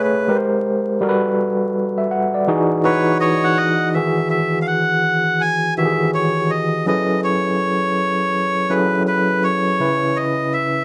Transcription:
Already playing: A3 G#4 B4 C#5
0.03 B4
0.28 G#3 G4 A#4 B4
0.36 C5
1.01 G3 F#4 A4 A#4
1.09 B4
1.98 E5
2.11 F#5
2.34 D5
2.48 E3 D#4 F#4 G#4
2.84 E3 D#4 F#4 B4 C#5
3.20 C#5 D#5
3.44 F#5
3.57 D#5
3.94 D#3 E3 F#4 G#4 E5
4.30 E5
4.62 F5
4.67 F#5
5.41 G#5
5.77 D#3 E3 F#4 G4 E5
5.86 G#4
6.14 C#5
6.50 D#5
6.86 F#3 C#4 E4 G#4 A4 B4 D#5
7.24 C#5
8.70 F#3 C#4 E4 G#4 A4 B4
9.07 B4
9.44 C#5
9.80 C#3 C#4 E4 B4
10.16 D#5
10.53 E5

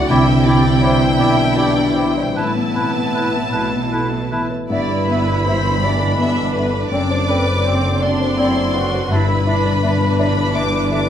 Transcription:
Already playing: A3 C4 D4 E4 F#4 D5 E5
0.09 C2 C3 D3 E3 D4 E4 D5 E5 G5
0.28 D4
0.45 E4 D5 G5
0.64 D4
0.82 E4 G4 C5 D5 E5 G5
1.01 D4
1.19 B1 B2 C4 E4 D5 E5 G5
1.37 D4
1.57 E4 G4 D5 G5
1.76 D4
1.96 G3 E4 C5 D5 E5 G5
2.17 D5
2.36 A1 A2 B3 E4 B4 A5
2.56 B3
2.75 B2 C4 E4 B4 A5
2.95 B3
3.14 E4 A4 B4 E5 A5
3.33 B3
3.52 B1 B2 A3 E4 B4 E5 A5
3.73 B3
3.92 A3 E4 A4 B4 A5
4.11 B3
4.31 E3 E4 B4 E5 A5
4.50 B4
4.70 G1 G2 B2 E3 B3 E4 D5 E5 B5
4.89 D4 B4
5.08 B3 B4 D5 E5
5.27 B4 E5
5.46 B3 G4 C5 E5
5.64 B4 B5
5.82 B3 D4 D5 E5 E6
6.00 B4
6.18 B3 B4 E5
6.22 E5
6.36 B4 E5
6.54 B3 A4 B4
6.59 E5
6.74 B3 B4
6.91 F#1 F#2 D3 C4 D4 D5 D6
7.10 C4 C5
7.28 C4 A4 B4 D5
7.46 C5 D5
7.65 C4 C5 D5
7.83 C5 A5
8.01 C4 D4 D5 C6 D6
8.20 C5 A5
8.38 C4 E4 C5 D5
8.57 C5 D5
8.75 C4 F#4 A4 B4 D5
8.93 C4 C5
9.10 G1 G2 E3 D4 E4 B4 E5 B5
9.28 B2 B4
9.46 D4 E4 E5
9.66 D5
9.83 B3 D4 E5
10.01 E5
10.18 D4 D5 E5 B5 D6
10.37 B4 E5
10.54 B3 D4 G4 E5 D6
10.74 D5
10.91 D4 E4 A4 E5 D6

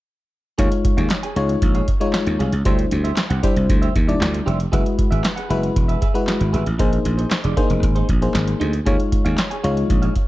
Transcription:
0.58 D#2 G#3 D#4 F4 G#4 C#5 F5, kick, closed hi-hat
0.71 muted clean electric guitar stroke, closed hi-hat
0.84 muted clean electric guitar stroke, kick, closed hi-hat
0.97 D#2 G#4 C#5 F5, closed hi-hat
1.10 muted clean electric guitar stroke, snare, clap, closed hi-hat
1.23 G#4 C#5 G#5, closed hi-hat
1.36 C#2 G#3 D#4 F4 G#4 C#5 F5, closed hi-hat
1.49 muted clean electric guitar stroke, closed hi-hat
1.62 A#1, muted clean electric guitar stroke, kick, closed hi-hat
1.75 G#4 C#5 F5, closed hi-hat
1.88 muted clean electric guitar stroke, kick, closed hi-hat
2.00 G#3 D#4 F4 C#5, muted clean electric guitar stroke, closed hi-hat
2.13 muted clean electric guitar stroke, snare, clap, closed hi-hat
2.27 D#2, muted clean electric guitar stroke, closed hi-hat
2.39 C2 G#4 C#5 F5, closed hi-hat
2.52 C#2, muted clean electric guitar stroke, closed hi-hat
2.65 D2 G3 D4 E4 G4 C5 E5, kick, closed hi-hat
2.78 muted clean electric guitar stroke, closed hi-hat
2.91 D2, muted clean electric guitar stroke, closed hi-hat
3.04 G4 C5 E5, closed hi-hat
3.16 muted clean electric guitar stroke, snare, clap, closed hi-hat
3.30 C2 G4 C5 F#5, closed hi-hat
3.43 G3 D4 E4 G4 C5 E5, kick, closed hi-hat
3.56 C2, muted clean electric guitar stroke, closed hi-hat
3.69 D2, muted clean electric guitar stroke, kick, closed hi-hat
3.82 G4 C5 E5, closed hi-hat
3.95 D#2, muted clean electric guitar stroke, kick, closed hi-hat
4.08 G3 D4 E4 D5, muted clean electric guitar stroke, closed hi-hat
4.21 D2, muted clean electric guitar stroke, snare, clap, closed hi-hat
4.34 muted clean electric guitar stroke, closed hi-hat
4.46 F1 G4 C5 E5, closed hi-hat
4.59 muted clean electric guitar stroke, closed hi-hat
4.72 F#1 G#3 E4 F#4 G#4 B4 E5, kick, closed hi-hat
4.85 muted clean electric guitar stroke, closed hi-hat
4.98 muted clean electric guitar stroke, kick, closed hi-hat
5.11 G#1 G#4 B4 E5, closed hi-hat
5.24 snare, clap, closed hi-hat
5.36 G#4 B4 F#5, closed hi-hat
5.49 F#1 G#3 E4 F#4 G#4 B4 E5, closed hi-hat
5.62 muted clean electric guitar stroke, closed hi-hat
5.75 E1, muted clean electric guitar stroke, kick, closed hi-hat
5.88 G#4 B4 E5, closed hi-hat
6.01 G#4 B4 E5, kick, closed hi-hat
6.14 G#3 E4 F#4 B4, muted clean electric guitar stroke, closed hi-hat
6.27 muted clean electric guitar stroke, snare, clap, closed hi-hat
6.41 G#1, muted clean electric guitar stroke, closed hi-hat
6.53 G#1 G#4 B4 E5, closed hi-hat
6.66 A1, muted clean electric guitar stroke, closed hi-hat
6.79 A#1 A#3 D#4 G#4 C5, kick, closed hi-hat
6.92 muted clean electric guitar stroke, closed hi-hat
7.05 A#1, muted clean electric guitar stroke, closed hi-hat
7.18 D#4 G#4 C5, closed hi-hat
7.31 snare, clap, closed hi-hat
7.44 F1 D#4 G#4 D5, closed hi-hat
7.56 A#3 D4 D#4 G#4 C5, kick, closed hi-hat
7.63 D#4
7.69 F1, muted clean electric guitar stroke, closed hi-hat
7.83 G#1, muted clean electric guitar stroke, kick, closed hi-hat
7.95 D#4 G#4 C5, closed hi-hat
8.08 A#1, muted clean electric guitar stroke, kick, closed hi-hat
8.21 A#3 D#4 G#4 C5, muted clean electric guitar stroke, closed hi-hat
8.34 G#1, muted clean electric guitar stroke, snare, clap, closed hi-hat
8.47 muted clean electric guitar stroke, closed hi-hat
8.60 D2 D#4 G#4 C5, closed hi-hat
8.73 muted clean electric guitar stroke, closed hi-hat
8.85 D#2 G#3 D#4 F4 G#4 C#5 F5, kick, closed hi-hat
8.99 muted clean electric guitar stroke, closed hi-hat
9.12 muted clean electric guitar stroke, kick, closed hi-hat
9.25 D#2 G#4 C#5 F5, closed hi-hat
9.38 snare, clap, closed hi-hat
9.50 G#4 C#5 G#5, closed hi-hat
9.63 C#2 G#3 D#4 F4 G#4 C#5 F5, closed hi-hat
9.77 muted clean electric guitar stroke, closed hi-hat
9.90 A#1, muted clean electric guitar stroke, kick, closed hi-hat
10.02 G#4 C#5 F5, closed hi-hat
10.15 muted clean electric guitar stroke, kick, closed hi-hat

